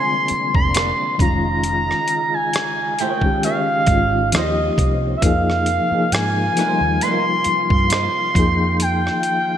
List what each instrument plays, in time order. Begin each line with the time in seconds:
Already playing: tonewheel organ C3 F3 A#3 D4, reed electric piano D3 G3 G#3 C4 F4 G#4, analog synth lead C6
0.28 muted fingered electric bass stroke, closed hi-hat
0.55 fingered electric bass F1, analog synth lead C6, kick
0.75 nylon-string guitar A#3 D4 G#4 C5, cross-stick, closed hi-hat
1.18 fingered electric bass F1, tonewheel organ C#3 G#3 D#4 F4, reed electric piano D#3 G3 C#4, analog synth lead A#5, kick, closed hi-hat
1.22 reed electric piano F4
1.26 reed electric piano G#3
1.64 closed hi-hat
1.91 cross-stick
2.08 closed hi-hat
2.34 analog synth lead G#5
2.53 muted nylon-string guitar stroke, cross-stick, closed hi-hat
2.99 nylon-string guitar A#3 F4 G#4 C#5, analog synth lead G5, closed hi-hat
3.21 reed electric piano D#3 G#3 C#4, kick
3.26 reed electric piano G4
3.43 nylon-string guitar A#3 F4 G#4 C#5, analog synth lead F5, closed hi-hat
3.87 fingered electric bass G#1, reed electric piano D#3 G#3 C#4, kick, closed hi-hat
3.92 reed electric piano F4
4.32 fingered electric bass D#2, reed electric piano F3 A#3 D#4, tonewheel organ G3 C4 C#4, nylon-string guitar G3 C#4 F4 C5, analog synth lead D#5, cross-stick, closed hi-hat
4.37 reed electric piano F4
4.43 reed electric piano G4
4.78 fingered electric bass C2, kick, closed hi-hat
5.17 analog synth lead E5
5.21 fingered electric bass F2, tonewheel organ C3 F3 A#3, reed electric piano F3 A#3 D#4, analog synth lead F5, kick, closed hi-hat
5.26 reed electric piano G#4
5.50 cross-stick
5.66 closed hi-hat
5.90 reed electric piano F3 A#3 D#4, muted fingered electric bass stroke
5.95 reed electric piano G#4
6.12 fingered electric bass G#2, analog synth lead G#5, muted nylon-string guitar stroke, cross-stick, closed hi-hat
6.55 reed electric piano F3 A#3 D#4, nylon-string guitar A#3 D#4 F4 C5, cross-stick, closed hi-hat
6.60 reed electric piano F4
6.67 reed electric piano G3
6.81 fingered electric bass D#2
7.01 nylon-string guitar A#3 D#4 F4 C5, analog synth lead C6, closed hi-hat
7.44 muted fingered electric bass stroke, closed hi-hat
7.70 fingered electric bass G2, analog synth lead C6, kick
7.90 nylon-string guitar A#3 D#4 F4 C5, cross-stick, closed hi-hat
8.34 fingered electric bass F2, tonewheel organ D#3 G5, reed electric piano F3 A#3 D#4, kick, closed hi-hat
8.39 reed electric piano G#4
8.80 analog synth lead G5, closed hi-hat
9.07 cross-stick
9.23 closed hi-hat